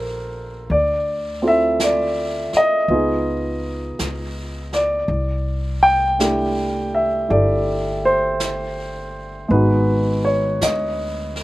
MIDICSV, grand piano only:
0, 0, Header, 1, 2, 480
1, 0, Start_track
1, 0, Tempo, 1102941
1, 300, Time_signature, 4, 2, 24, 8
1, 4976, End_track
2, 0, Start_track
2, 0, Title_t, "Grand piano"
2, 0, Program_c, 0, 0
2, 0, Control_c, 0, 64, 127
2, 0, Note_on_c, 0, 58, 40
2, 0, Note_on_c, 0, 62, 36
2, 0, Note_on_c, 0, 65, 37
2, 0, Note_on_c, 0, 67, 31
2, 0, Note_on_c, 0, 69, 75
2, 0, Note_on_c, 0, 70, 61
2, 0, Note_on_c, 0, 72, 59
2, 0, Note_on_c, 0, 74, 42
2, 297, Note_off_c, 0, 58, 0
2, 298, Note_off_c, 0, 62, 0
2, 298, Note_off_c, 0, 65, 0
2, 300, Note_off_c, 0, 67, 0
2, 304, Note_off_c, 0, 74, 0
2, 306, Control_c, 0, 64, 0
2, 309, Note_off_c, 0, 69, 0
2, 309, Note_off_c, 0, 72, 0
2, 311, Note_on_c, 0, 74, 72
2, 316, Note_off_c, 0, 70, 0
2, 393, Control_c, 0, 64, 127
2, 619, Note_on_c, 0, 60, 40
2, 621, Note_on_c, 0, 64, 34
2, 622, Note_on_c, 0, 65, 39
2, 627, Note_on_c, 0, 69, 43
2, 636, Note_off_c, 0, 74, 0
2, 642, Note_on_c, 0, 76, 80
2, 795, Note_off_c, 0, 76, 0
2, 798, Note_on_c, 0, 74, 67
2, 1092, Note_off_c, 0, 74, 0
2, 1118, Note_on_c, 0, 75, 82
2, 1257, Note_off_c, 0, 60, 0
2, 1258, Note_off_c, 0, 64, 0
2, 1258, Note_off_c, 0, 65, 0
2, 1261, Note_off_c, 0, 69, 0
2, 1261, Note_on_c, 0, 59, 46
2, 1263, Note_on_c, 0, 63, 37
2, 1264, Control_c, 0, 64, 0
2, 1264, Note_on_c, 0, 65, 39
2, 1267, Note_on_c, 0, 68, 51
2, 1343, Control_c, 0, 64, 127
2, 1726, Note_off_c, 0, 75, 0
2, 2062, Note_on_c, 0, 74, 68
2, 2215, Note_off_c, 0, 59, 0
2, 2216, Note_off_c, 0, 63, 0
2, 2216, Note_off_c, 0, 65, 0
2, 2218, Note_off_c, 0, 68, 0
2, 2218, Control_c, 0, 64, 0
2, 2287, Control_c, 0, 64, 127
2, 2521, Note_off_c, 0, 74, 0
2, 2536, Note_on_c, 0, 79, 93
2, 2693, Note_on_c, 0, 57, 38
2, 2695, Note_on_c, 0, 62, 38
2, 2697, Note_on_c, 0, 64, 35
2, 2700, Note_on_c, 0, 67, 46
2, 3023, Note_on_c, 0, 76, 67
2, 3028, Note_off_c, 0, 79, 0
2, 3165, Note_off_c, 0, 64, 0
2, 3171, Note_on_c, 0, 64, 36
2, 3172, Note_off_c, 0, 67, 0
2, 3178, Note_on_c, 0, 67, 32
2, 3178, Note_on_c, 0, 74, 67
2, 3181, Note_off_c, 0, 76, 0
2, 3183, Note_on_c, 0, 69, 45
2, 3505, Note_on_c, 0, 72, 79
2, 3506, Note_off_c, 0, 74, 0
2, 4127, Note_on_c, 0, 56, 46
2, 4133, Note_off_c, 0, 57, 0
2, 4133, Note_off_c, 0, 64, 0
2, 4134, Note_off_c, 0, 62, 0
2, 4136, Note_off_c, 0, 67, 0
2, 4138, Control_c, 0, 64, 0
2, 4138, Note_on_c, 0, 59, 42
2, 4138, Note_on_c, 0, 71, 68
2, 4139, Note_off_c, 0, 69, 0
2, 4144, Note_on_c, 0, 63, 39
2, 4149, Note_on_c, 0, 66, 49
2, 4158, Note_off_c, 0, 72, 0
2, 4213, Control_c, 0, 64, 127
2, 4459, Note_on_c, 0, 73, 70
2, 4468, Note_off_c, 0, 71, 0
2, 4622, Note_off_c, 0, 73, 0
2, 4626, Note_on_c, 0, 75, 55
2, 4976, Note_off_c, 0, 56, 0
2, 4976, Note_off_c, 0, 59, 0
2, 4976, Note_off_c, 0, 63, 0
2, 4976, Note_off_c, 0, 66, 0
2, 4976, Note_off_c, 0, 75, 0
2, 4976, End_track
0, 0, End_of_file